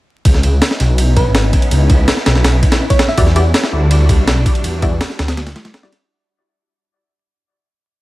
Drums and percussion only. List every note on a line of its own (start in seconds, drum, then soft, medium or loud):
0.25 kick loud
0.25 ride medium
0.34 snare soft
0.43 ride medium
0.62 snare loud
0.62 ride medium
0.71 snare medium
0.80 snare soft
0.80 ride medium
0.98 ride medium
1.17 kick medium
1.17 ride medium
1.35 snare loud
1.35 ride medium
1.53 kick medium
1.53 ride medium
1.62 ride soft
1.71 ride medium
1.90 kick loud
1.90 ride medium
2.08 snare loud
2.08 ride medium
2.17 snare soft
2.26 snare loud
2.26 ride medium
2.35 snare medium
2.44 snare loud
2.44 ride medium
2.63 kick medium
2.63 ride medium
2.72 snare loud
2.72 ride medium
2.90 kick medium
2.90 ride medium
2.99 snare loud
2.99 ride medium
3.09 snare soft
3.18 kick loud
3.18 ride medium
3.27 snare soft
3.36 ride medium
3.54 snare loud
3.54 ride medium
3.63 snare medium
3.91 ride medium
4.09 kick medium
4.09 ride medium
4.27 snare loud
4.27 ride medium
4.46 kick loud
4.46 ride medium
4.55 ride soft
4.64 ride medium
4.82 kick loud
4.82 ride medium
5.01 snare loud
5.01 ride medium
5.10 snare soft
5.19 snare loud
5.19 ride medium
5.28 snare loud
5.28 ride medium
5.37 snare loud
5.37 ride medium
5.47 snare loud
5.47 ride medium
5.56 snare loud
5.56 ride medium
5.65 snare loud
5.65 ride medium
5.74 snare loud
5.74 ride medium
5.83 snare soft
5.92 snare soft
5.92 ride medium